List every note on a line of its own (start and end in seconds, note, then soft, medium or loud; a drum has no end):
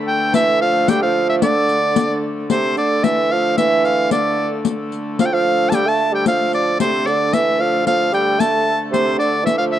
0.00 2.50 D3 medium
0.00 2.50 A3 medium
0.08 0.32 G5 medium
0.33 0.62 E3 medium
0.33 0.59 E5 loud
0.33 riq medium
0.61 0.90 F3 medium
0.61 0.91 F5 medium
0.88 1.04 G3 medium
0.88 1.02 G5 loud
0.88 riq medium
1.02 1.44 F3 medium
1.02 1.27 F5 medium
1.29 1.35 E5 medium
1.42 2.23 D3 medium
1.42 2.20 D5 medium
1.42 riq medium
1.69 riq soft
1.96 riq medium
2.50 2.78 C3 medium
2.50 6.80 D3 medium
2.50 6.80 A3 medium
2.50 2.75 C5 medium
2.50 riq medium
2.77 3.06 D3 medium
2.77 3.05 D5 medium
2.77 riq soft
3.04 3.33 E3 medium
3.04 3.33 E5 medium
3.04 riq medium
3.31 3.57 F3 medium
3.31 3.57 F5 medium
3.57 4.14 E3 medium
3.57 3.86 E5 medium
3.57 riq soft
3.85 4.11 F5 medium
3.85 riq soft
4.11 4.52 D3 medium
4.11 4.49 D5 medium
4.11 riq medium
4.65 riq medium
4.92 riq soft
5.19 5.31 F3 medium
5.19 5.27 F5 medium
5.19 riq medium
5.26 5.35 G5 medium
5.32 5.74 F3 medium
5.32 5.71 F5 medium
5.69 5.88 G3 medium
5.69 5.76 A5 medium
5.69 riq medium
5.74 5.90 G5 loud
5.87 6.14 A3 medium
5.87 6.14 A5 medium
6.13 6.27 G3 medium
6.13 6.26 G5 medium
6.26 6.79 F3 medium
6.26 6.52 F5 medium
6.26 riq medium
6.53 6.78 D5 medium
6.53 riq soft
6.79 7.09 C3 medium
6.79 9.79 D3 medium
6.79 9.79 A3 medium
6.79 7.08 C5 medium
6.79 riq medium
7.07 7.36 D3 medium
7.07 7.35 D5 medium
7.07 riq soft
7.33 7.61 E3 medium
7.33 7.62 E5 medium
7.33 riq medium
7.59 7.85 F3 medium
7.59 7.87 F5 medium
7.86 8.11 F3 medium
7.86 8.12 F5 medium
7.86 riq soft
8.12 8.41 G3 medium
8.12 8.42 G5 medium
8.12 riq soft
8.39 8.79 A3 medium
8.39 8.80 A5 medium
8.39 riq medium
8.91 9.20 C3 medium
8.91 9.18 C5 medium
8.91 riq medium
9.18 9.46 D3 medium
9.18 9.44 D5 medium
9.18 riq soft
9.44 9.60 E3 medium
9.44 9.57 E5 medium
9.44 riq medium
9.58 9.79 F3 medium
9.58 9.64 F5 medium
9.72 9.79 E5 medium